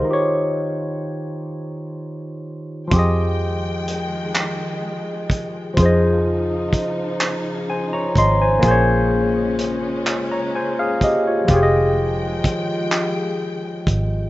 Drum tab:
HH |------|x-xx-x|x-xx-x|x-xx-x|
CP |------|---x--|---x--|---x--|
BD |------|o----o|o-o--o|o----o|

HH |x-xx-x|
CP |---x--|
BD |o-o--o|